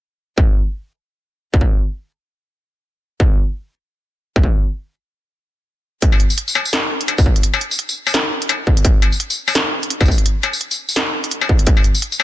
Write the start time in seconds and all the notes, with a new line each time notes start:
0.38 kick
1.54 kick
1.61 kick
3.20 kick
4.36 kick
4.44 kick
6.02 kick, closed hi-hat
6.12 struck metal
6.20 closed hi-hat
6.30 tambourine
6.38 closed hi-hat
6.48 tambourine
6.55 struck metal
6.65 tambourine
6.73 snare, closed hi-hat
7.01 closed hi-hat
7.08 closed hi-hat, struck metal
7.18 kick, tambourine
7.26 kick
7.36 closed hi-hat
7.43 closed hi-hat
7.54 struck metal
7.61 closed hi-hat
7.71 tambourine
7.79 closed hi-hat
7.89 tambourine
8.07 tambourine, struck metal
8.14 snare, closed hi-hat
8.42 closed hi-hat
8.49 closed hi-hat, struck metal
8.67 kick
8.77 closed hi-hat
8.85 kick, closed hi-hat
9.02 closed hi-hat, struck metal
9.12 tambourine
9.20 closed hi-hat
9.30 tambourine
9.48 tambourine, struck metal
9.55 snare, closed hi-hat
9.83 closed hi-hat
9.90 closed hi-hat
10.01 kick, tambourine, struck metal
10.05 kick, tambourine
10.11 tambourine
10.18 closed hi-hat
10.26 closed hi-hat
10.43 closed hi-hat, struck metal
10.53 tambourine
10.61 closed hi-hat
10.71 tambourine
10.89 tambourine
10.96 snare, closed hi-hat, struck metal
11.24 closed hi-hat
11.31 closed hi-hat
11.41 struck metal
11.49 kick
11.59 closed hi-hat
11.67 kick, closed hi-hat
11.77 struck metal
11.84 closed hi-hat
11.95 tambourine
12.02 closed hi-hat
12.12 tambourine
12.20 struck metal